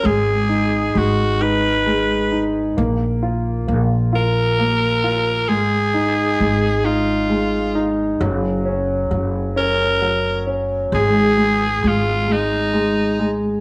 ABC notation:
X:1
M:6/8
L:1/8
Q:3/8=44
K:Abdor
V:1 name="Alto saxophone"
A2 G c2 z | z3 B3 | A3 F2 z | z3 B2 z |
A2 F E2 z |]
V:2 name="Grand piano"
A, E A, E A, E | B, F B, F B, F | A, E A, E A, E | G, D G, D G, D |
A, A, A, A, A, A, |]
V:3 name="Upright bass" clef=bass
A,,,2 A,,,4 | B,,,2 B,,,4 | A,,,2 A,,,4 | G,,,2 G,,,4 |
A,,,2 A,,,4 |]